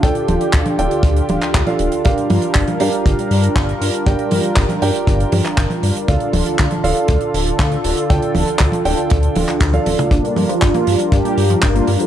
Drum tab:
HH |xxxxxxxxxxxxxxxx|xxoxxxoxxxoxxxox|xxoxxxoxxxoxxxox|xxoxxxoxxxoxxxox|
CP |----x------xx---|----x-------x---|----x------xx---|----x-------x---|
T1 |--o--o----o--o--|--o--o----------|--o--o----o--o--|--o--o----------|
T2 |----------------|----------------|----------------|----------------|
BD |o---o---o---o---|o---o---o---o---|o---o---o---o---|o---o---o---o---|

HH |xxoxxxoxxxoxxxox|xxoxxxoxxxoxxxox|
CP |----x------xx---|----x-------x---|
T1 |--o--o----o--oo-|--o--o----------|
T2 |---------------o|----------------|
BD |o---o---o---o---|o---o---o---o---|